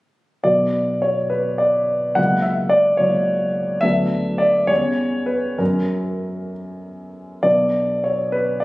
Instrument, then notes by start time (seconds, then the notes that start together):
grand piano
0.44 B1 F#3 B3 F#4 D5
1.02 C#5
1.30 B4
1.58 D5
2.15 C#2 F#3 A#3 E4 F#5
2.42 E5
2.69 D5
2.97 C#2 F#3 A#3 E4 C#5
3.81 D2 F#3 B3 D4 E5
4.38 D5
4.67 E2 G3 C#4 C#5
5.26 B4
5.58 F#2 F#3 C#4 A#4
7.43 B1 F#3 B3 D4 D5
8.04 C#5
8.32 B4
8.60 D5